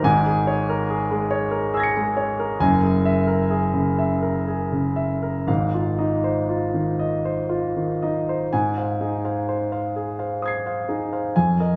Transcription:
0.03 2.55 G#1 medium
0.03 2.56 G#2 medium
0.03 0.38 G#5 medium
0.26 0.60 G#4 medium
0.47 0.81 C#5 medium
0.69 1.02 A#4 medium
0.90 1.23 G#4 medium
1.11 1.44 G#3 medium
1.31 1.64 C#5 medium
1.51 1.86 A#4 medium
1.74 2.08 G#4 medium
1.74 2.57 E6 soft
1.74 2.58 G#6 soft
1.80 2.60 A#6 soft
1.80 2.61 C#7 soft
1.97 2.31 G#3 medium
2.17 2.52 C#5 medium
2.40 2.61 A#4 medium
2.60 5.44 F#1 medium
2.60 5.45 F#2 medium
2.60 2.95 G#5 medium
2.83 3.18 G#4 soft
3.05 3.41 E5 medium
3.27 3.64 A#4 soft
3.50 3.88 G#4 medium
3.73 4.12 C#3 soft
3.99 4.38 E5 medium
4.22 4.62 A#4 soft
4.48 4.87 G#4 soft
4.72 5.12 C#3 soft
4.96 5.37 E5 soft
5.22 5.48 A#4 soft
5.47 8.48 G#1 soft
5.47 8.48 G#2 soft
5.47 5.89 F5 medium
5.74 6.14 F4 soft
5.99 6.39 D#4 soft
5.99 6.39 D#5 soft
6.24 6.64 C5 soft
6.49 6.89 F4 soft
6.74 7.14 D#3 soft
6.99 7.40 D#5 soft
7.25 7.65 C5 soft
7.49 7.91 F4 soft
7.76 8.18 D#3 soft
8.03 8.43 D#4 soft
8.03 8.43 D#5 soft
8.29 8.53 C5 soft
8.53 11.30 G#2 soft
8.53 8.91 G#5 medium
8.78 8.99 C5 soft
8.78 8.98 F5 soft
9.01 9.38 D#4 soft
9.01 9.38 G#4 soft
9.25 9.46 C5 soft
9.25 9.46 F5 soft
9.49 9.71 C5 soft
9.72 9.93 C5 soft
9.72 9.93 F5 soft
9.96 10.33 G#4 soft
10.19 10.40 C5 soft
10.19 10.39 F5 soft
10.42 10.65 C5 soft
10.42 11.30 D#6 soft
10.42 11.32 G#6 soft
10.48 11.33 C7 soft
10.66 10.86 C5 soft
10.66 10.86 F5 soft
10.88 11.25 D#4 soft
10.88 11.25 G#4 soft
11.13 11.33 C5 soft
11.13 11.33 F5 soft
11.36 11.76 F2 medium
11.36 11.73 G#5 medium
11.60 11.76 A#4 soft
11.60 11.76 D#5 soft

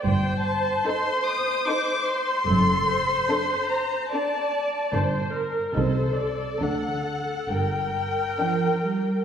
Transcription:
0.04 0.71 G1 soft
0.04 0.71 G2 medium
0.04 2.45 C5 medium
0.04 0.43 G5 medium
0.47 0.87 A5 medium
0.87 1.48 D#4 soft
0.87 1.48 A4 medium
0.87 1.28 C6 medium
1.27 1.68 D#6 medium
1.68 2.28 D#4 soft
1.68 2.29 A4 soft
1.68 2.08 D6 medium
2.08 3.71 C6 medium
2.48 3.13 F#1 medium
2.48 3.13 F#2 medium
2.48 2.88 A4 medium
2.89 4.12 C5 medium
3.30 3.92 D4 soft
3.30 3.92 A4 medium
3.70 4.12 A#5 medium
4.13 4.74 D4 soft
4.13 4.74 A4 soft
4.13 4.93 D5 medium
4.13 4.92 A5 medium
4.93 5.60 G1 soft
4.93 5.60 G2 medium
4.93 5.56 D4 soft
4.93 5.56 A#4 soft
4.93 5.35 C5 soft
5.35 5.77 A#4 soft
5.75 6.44 C2 soft
5.75 6.44 C3 soft
5.75 6.40 D#4 soft
5.75 6.60 A4 soft
5.75 6.39 A4 soft
5.75 6.15 C5 soft
6.18 6.60 D5 soft
6.59 7.31 D2 soft
6.59 7.31 D3 soft
6.59 7.26 D4 soft
6.59 7.26 A4 soft
6.59 7.47 A4 soft
6.59 7.48 F#5 soft
7.48 8.22 G1 soft
7.48 8.22 G2 soft
7.48 9.24 A#4 soft
7.48 9.24 G5 medium
8.39 8.82 F3 soft
8.39 9.08 D4 soft
8.39 9.08 A#4 soft
8.86 9.24 G3 soft

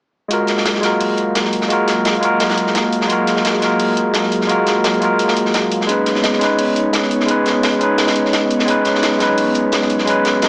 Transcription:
0.28 5.85 F#3 medium
0.28 0.79 G#3 medium
0.28 5.85 A#3 medium
0.28 0.81 F4 medium
0.28 0.82 F#4 medium
0.28 8.64 G#4 medium
0.28 5.85 F5 medium
0.28 closed hi-hat medium
0.33 0.82 A#4 medium
0.47 snare soft
0.47 closed hi-hat medium
0.57 snare soft
0.66 snare loud
0.66 closed hi-hat medium
0.75 snare soft
0.81 1.67 G#3 medium
0.81 1.68 F4 medium
0.81 1.69 F#4 medium
0.81 snare medium
0.81 closed hi-hat medium
0.85 1.69 A#4 medium
1.00 closed hi-hat medium
1.00 open hi-hat medium
1.17 closed hi-hat medium
1.35 snare loud
1.35 closed hi-hat medium
1.45 snare soft
1.53 closed hi-hat medium
1.61 snare soft
1.68 2.19 G#3 medium
1.68 2.20 F4 medium
1.68 2.21 F#4 medium
1.68 closed hi-hat medium
1.73 2.22 A#4 loud
1.88 snare soft
1.88 closed hi-hat medium
2.05 snare loud
2.05 closed hi-hat medium
2.14 closed hi-hat soft
2.20 3.06 G#3 medium
2.20 3.07 F4 medium
2.20 3.08 F#4 medium
2.20 closed hi-hat medium
2.25 3.09 A#4 medium
2.40 snare medium
2.40 closed hi-hat medium
2.49 snare medium
2.49 closed hi-hat medium
2.57 closed hi-hat medium
2.67 snare soft
2.75 snare loud
2.75 closed hi-hat medium
2.93 closed hi-hat medium
3.01 snare soft
3.08 3.59 G#3 medium
3.08 3.60 F4 medium
3.08 3.61 F#4 medium
3.08 closed hi-hat medium
3.12 3.61 A#4 medium
3.27 snare soft
3.27 closed hi-hat medium
3.37 snare soft
3.45 snare loud
3.45 closed hi-hat medium
3.53 snare soft
3.60 4.46 G#3 medium
3.60 4.47 F4 medium
3.60 4.48 F#4 medium
3.60 snare medium
3.60 closed hi-hat medium
3.65 4.49 A#4 medium
3.80 closed hi-hat medium
3.80 open hi-hat medium
3.97 closed hi-hat medium
4.14 snare loud
4.14 closed hi-hat medium
4.23 snare soft
4.32 closed hi-hat medium
4.41 snare soft
4.47 4.98 G#3 medium
4.47 4.99 F4 medium
4.47 5.00 F#4 medium
4.47 closed hi-hat medium
4.52 5.01 A#4 medium
4.66 snare medium
4.66 closed hi-hat medium
4.84 snare loud
4.84 closed hi-hat medium
4.94 closed hi-hat soft
4.99 5.85 G#3 medium
4.99 5.87 F4 medium
4.99 5.87 F#4 medium
4.99 closed hi-hat medium
5.04 5.88 A#4 medium
5.19 closed hi-hat medium
5.28 snare medium
5.37 closed hi-hat medium
5.46 snare soft
5.54 snare loud
5.54 closed hi-hat medium
5.72 closed hi-hat medium
5.81 snare soft
5.87 6.38 G#3 medium
5.87 10.49 B3 medium
5.87 6.39 C#4 medium
5.87 10.49 D#4 medium
5.87 6.40 D#4 medium
5.87 10.49 C#5 medium
5.87 closed hi-hat medium
5.91 6.41 B4 medium
6.06 snare soft
6.06 closed hi-hat medium
6.16 snare soft
6.24 snare loud
6.24 closed hi-hat medium
6.33 snare soft
6.39 7.25 G#3 medium
6.39 7.26 C#4 medium
6.39 7.27 D#4 medium
6.39 snare medium
6.39 closed hi-hat medium
6.44 7.28 B4 medium
6.58 closed hi-hat medium
6.58 open hi-hat medium
6.76 closed hi-hat medium
6.93 snare loud
6.93 closed hi-hat medium
7.03 snare soft
7.11 closed hi-hat medium
7.20 snare soft
7.26 7.77 G#3 medium
7.26 7.78 C#4 medium
7.26 7.79 D#4 medium
7.26 closed hi-hat medium
7.31 7.80 B4 medium
7.46 snare soft
7.46 closed hi-hat medium
7.63 snare loud
7.63 closed hi-hat medium
7.72 closed hi-hat soft
7.78 8.64 G#3 medium
7.78 8.66 C#4 medium
7.78 8.66 D#4 medium
7.78 closed hi-hat medium
7.83 8.67 B4 medium
7.98 snare medium
7.98 closed hi-hat medium
8.07 snare medium
8.07 closed hi-hat medium
8.15 closed hi-hat medium
8.25 snare soft
8.33 snare loud
8.33 closed hi-hat medium
8.50 closed hi-hat medium
8.59 snare medium
8.66 10.49 F#3 medium
8.66 9.17 G#3 medium
8.66 9.18 C#4 medium
8.66 9.19 D#4 medium
8.66 closed hi-hat medium
8.70 9.20 B4 loud
8.85 snare soft
8.85 closed hi-hat medium
8.95 snare soft
9.03 snare loud
9.03 closed hi-hat medium
9.12 snare soft
9.18 10.04 G#3 medium
9.18 10.05 C#4 medium
9.18 10.06 D#4 medium
9.18 snare medium
9.18 closed hi-hat medium
9.23 10.07 B4 medium
9.38 closed hi-hat medium
9.38 open hi-hat medium
9.55 closed hi-hat medium
9.72 snare loud
9.72 closed hi-hat medium
9.82 snare soft
9.90 closed hi-hat medium
9.98 snare soft
10.05 10.49 G#3 medium
10.05 10.49 C#4 medium
10.05 10.49 D#4 medium
10.05 closed hi-hat medium
10.10 10.49 B4 loud
10.25 snare soft
10.25 closed hi-hat medium
10.42 snare loud
10.42 closed hi-hat medium

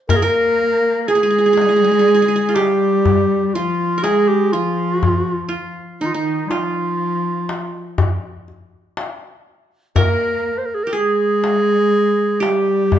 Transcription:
0.09 0.23 A#3 medium
0.09 0.18 A#4 loud
0.09 0.22 A#4 medium
0.09 darbuka dum medium
0.16 0.25 G#4 medium
0.22 1.09 A#3 medium
0.22 1.36 A#4 medium
0.22 1.01 A#4 loud
0.34 darbuka ka soft
1.01 1.09 A#4 medium
1.08 2.57 G#3 medium
1.08 2.57 G#4 loud
1.08 1.15 G#4 medium
1.08 darbuka ka soft
1.15 1.23 G#4 medium
1.23 1.30 G#4 medium
1.30 1.38 G#4 medium
1.38 1.46 G#4 medium
1.46 1.53 G#4 medium
1.53 1.61 G#4 medium
1.58 1.68 G#4 soft
1.58 darbuka tek medium
1.69 1.76 G#4 medium
1.76 1.84 G#4 soft
1.84 1.91 G#4 medium
1.91 1.99 G#4 soft
1.99 2.08 G#4 medium
2.08 2.14 G#4 medium
2.14 2.22 G#4 medium
2.22 2.28 G#4 medium
2.28 2.35 G#4 medium
2.36 2.62 G#4 medium
2.49 3.55 F4 medium
2.55 3.57 G3 medium
2.55 3.47 G4 medium
2.55 3.81 G4 medium
2.55 darbuka tek medium
3.05 darbuka dum medium
3.47 3.56 G4 medium
3.54 4.04 F3 medium
3.54 4.05 F4 medium
3.54 4.53 F4 medium
3.54 darbuka ka soft
3.98 5.11 A#4 medium
4.03 4.54 G#3 medium
4.03 4.30 G#4 medium
4.03 5.25 G#4 medium
4.03 darbuka tek medium
4.28 4.54 G4 medium
4.52 5.74 F3 medium
4.52 4.95 F4 medium
4.52 5.48 F4 medium
4.95 5.07 F#4 medium
5.03 darbuka dum medium
5.07 5.19 F4 medium
5.19 5.31 F#4 medium
5.28 5.73 F4 medium
5.28 darbuka ka soft
5.49 6.51 F4 medium
6.01 6.15 D#3 medium
6.01 6.14 D#4 medium
6.01 6.08 D#4 medium
6.01 darbuka ka soft
6.06 6.16 F4 medium
6.14 6.47 D#3 medium
6.14 7.59 D#4 medium
6.14 6.51 D#4 medium
6.46 6.54 G3 medium
6.50 7.99 F3 medium
6.50 7.98 F4 medium
6.50 7.95 F4 medium
6.50 darbuka tek medium
7.49 darbuka tek medium
7.98 darbuka dum loud
8.48 darbuka ka soft
8.97 darbuka tek medium
9.96 10.54 A#3 medium
9.96 11.09 A#4 medium
9.96 10.60 A#4 loud
9.96 darbuka dum loud
10.21 darbuka ka soft
10.58 10.67 C5 medium
10.66 10.76 A#4 medium
10.75 10.85 G#4 medium
10.84 10.99 G4 medium
10.84 10.94 A#4 medium
10.93 12.45 G#3 medium
10.93 12.46 G#4 medium
10.93 12.42 G#4 loud
11.44 darbuka tek medium
12.40 12.99 G3 medium
12.40 12.99 G4 medium
12.40 darbuka tek medium
12.92 darbuka dum medium

